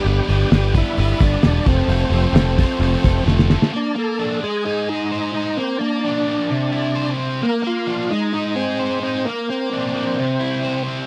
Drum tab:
HH |--o-o-o-o-o-o-o-|o-o-o-o-o-o-----|----------------|----------------|
SD |----o-------o---|----o-------oooo|----------------|----------------|
BD |------o---o---o-|------o---o-----|----------------|----------------|

HH |----------------|----------------|
SD |----------------|----------------|
BD |----------------|----------------|